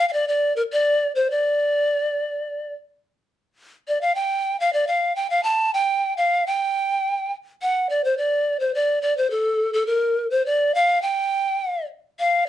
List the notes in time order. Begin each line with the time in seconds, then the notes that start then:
0.08 F5
0.13 D5
0.28 D5
0.56 A#4
0.72 D5
1.15 C5
1.30 D5
3.88 D5
4.01 F5
4.15 G5
4.60 F5
4.73 D5
4.87 F5
5.16 G5
5.30 F5
5.43 A5
5.74 G5
6.17 F5
6.47 G5
7.62 F#5
7.90 D5
8.04 C5
8.18 D5
8.60 C5
8.74 D5
9.02 D5
9.17 C5
9.30 A4
9.73 A4
9.87 A#4
10.30 C5
10.46 D5
10.75 F5
11.02 G5
12.19 F5